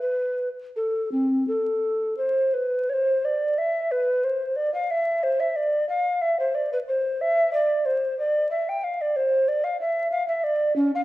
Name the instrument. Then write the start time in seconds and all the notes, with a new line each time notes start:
recorder
0.02 B4
0.76 A4
1.12 C4
1.48 A4
2.17 C5
2.54 B4
2.89 C5 C#5
3.25 D5
3.58 E5
3.91 B4
4.24 C5
4.56 D5
4.74 F5
4.91 E5
5.23 C5
5.40 E5
5.56 D5
5.89 F5
6.21 E5
6.39 C5
6.55 D5
6.73 B4
6.88 C5
7.21 E5
7.53 D5
7.85 C5
8.19 D5
8.51 E5
8.69 G5
8.84 F5
9.01 D5
9.16 C5
9.48 D5
9.64 F5
9.81 E5
10.11 F5
10.28 E5
10.44 D5
10.76 C#4
10.95 F5